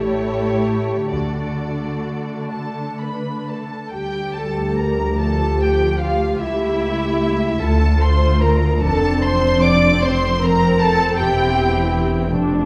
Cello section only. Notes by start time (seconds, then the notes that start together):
Already playing: A2
1.12 D3
3.92 D2
6.42 C#2
7.60 D2
8.82 F2
11.17 E2
12.32 F2